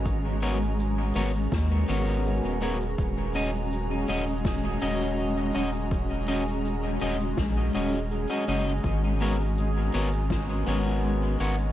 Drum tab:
SH |x--xx--xx--xxx-x|x--xx--xx--xxx-x|x--xx--xx--xxx-x|x--xx--xx--xxx-x|
SD |--------o-------|--------o-------|--------o-------|--------o-------|
BD |o-------o-------|o-------o-------|o-------o-------|o-------o-------|